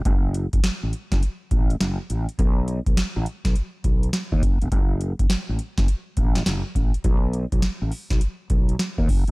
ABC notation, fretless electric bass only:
X:1
M:4/4
L:1/16
Q:"Swing 16ths" 1/4=103
K:F#dor
V:1 name="Fretless electric bass" clef=bass
F,,,3 F,,, z A,,, z F,,, z2 A,,,2 F,,, z A,,, z | B,,,3 B,,, z A,,, z B,,, z2 B,,,2 z D,, F,,, E,,, | F,,,3 F,,, z A,,, z F,,, z2 A,,,2 F,,, z A,,, z | B,,,3 B,,, z A,,, z B,,, z2 B,,,2 z D,, F,,, E,,, |]